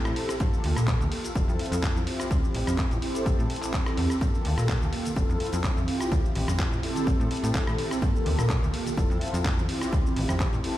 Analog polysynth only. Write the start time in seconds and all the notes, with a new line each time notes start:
Already playing: C4 E4 G4 A4
0.39 A#3 F4 G4 A4
1.34 C4 E4 F4 A4
2.06 C4 E4 F4 G4
3.01 C4 E4 G4 A4
4.21 A#3 F4 G4 A4
5.16 C4 E4 F4 A4
5.87 C4 E4 F4 G4
6.82 C4 E4 G4 A4
8.01 A#3 F4 G4 A4
8.97 C4 E4 F4 A4
9.68 C4 E4 F4 G4
10.63 C4 E4 G4 A4